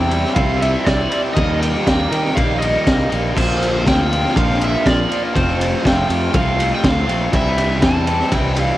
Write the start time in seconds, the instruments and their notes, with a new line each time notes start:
Already playing: fingered electric bass E2, overdriven electric guitar C3 G3 C4 G5
0.10 overdriven electric guitar G3 C4 E4, ride
0.25 snare
0.34 fingered electric bass C2, overdriven electric guitar C3 G3 C4 E4 F5, kick, ride
0.60 overdriven electric guitar G3 C4 E4 E5, ride
0.85 fingered electric bass C2, overdriven electric guitar D5, kick, snare, ride
1.10 overdriven electric guitar G3 C4 E4, ride
1.33 fingered electric bass D#2, overdriven electric guitar D#3 G3 A#3 D#5, kick, ride
1.38 overdriven electric guitar D#4
1.61 overdriven electric guitar G5, ride
1.84 fingered electric bass D#2, overdriven electric guitar D#3 G3 A#3 D#4, kick, snare, ride
2.10 fingered electric bass D#3, overdriven electric guitar G3 A#3 D#4, ride
2.25 snare
2.34 fingered electric bass A#1, overdriven electric guitar D#3 G3 A#3 D#4 F5, kick, ride
2.59 overdriven electric guitar G3 A#3 D#4 D#5, ride
2.87 fingered electric bass C2, kick, snare, ride
3.10 fingered electric bass A#1, overdriven electric guitar G3 A#3 D#4, ride
3.35 fingered electric bass A#1, overdriven electric guitar A#2 D3 F3 A#3 F4 C5, kick, crash
3.62 ride
3.84 fingered electric bass D2, overdriven electric guitar D3 F3 A#3 F4 G5, kick, snare, ride
4.09 overdriven electric guitar F3 A#3 F4, ride
4.25 snare
4.34 fingered electric bass A#1, overdriven electric guitar A#2 D3 F3 A#3 F4 F5, kick, ride
4.50 snare
4.60 overdriven electric guitar F3 A#3 F4, ride
4.64 overdriven electric guitar E5
4.86 fingered electric bass A#1, overdriven electric guitar D5, kick, snare, ride
5.09 overdriven electric guitar F3 A#3 F4, ride
5.34 fingered electric bass F1, overdriven electric guitar F3 A3 C4 F4 C5, kick, ride
5.61 ride
5.84 fingered electric bass F1, overdriven electric guitar F3 A3 C4 F4 G5, kick, snare, ride
6.08 fingered electric bass F2, overdriven electric guitar A3 C4 F4, ride
6.32 fingered electric bass C2, overdriven electric guitar F3 A3 C4 F4 F5, kick, ride
6.57 overdriven electric guitar A3 C4 F4, ride
6.75 overdriven electric guitar G5
6.84 fingered electric bass D2, kick, snare, ride
6.88 overdriven electric guitar F5
7.07 fingered electric bass A#1, overdriven electric guitar A3 C4 F4, ride
7.32 fingered electric bass C2, overdriven electric guitar C3 E3 G3 C4 E4, kick, ride
7.36 overdriven electric guitar E5
7.58 ride
7.81 fingered electric bass E2, overdriven electric guitar E3 G3 C4 E4 A5, kick, snare, ride
8.06 overdriven electric guitar G3 C4 E4, ride
8.20 snare
8.31 fingered electric bass C2, overdriven electric guitar C3 E3 G3 C4 E4 G5, kick, ride
8.56 overdriven electric guitar G3 C4 E4 F5, ride